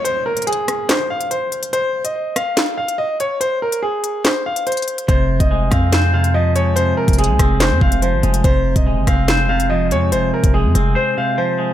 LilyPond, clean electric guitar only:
\new Staff \with { instrumentName = "Clean electric guitar" } { \clef bass \time 4/4 \key f \minor \tempo 4 = 143 r1 | r1 | r1 | c4 aes8 c'8 c''8 c8 f8 aes8 |
c4 aes8 c'8 c''8 c8 f8 aes8 | c4 aes8 c'8 c''8 c8 f8 aes8 | c4 aes8 c'8 c''8 c8 f8 aes8 | }